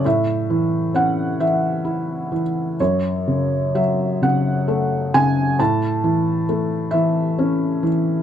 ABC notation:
X:1
M:6/8
L:1/8
Q:3/8=44
K:A
V:1 name="Felt piano"
e2 f e2 z | c2 e f2 g | a2 z e2 z |]
V:2 name="Felt piano" clef=bass
A,, E, C E, E E, | F,, C, F, C, A, C, | A,, E, A, E, C E, |]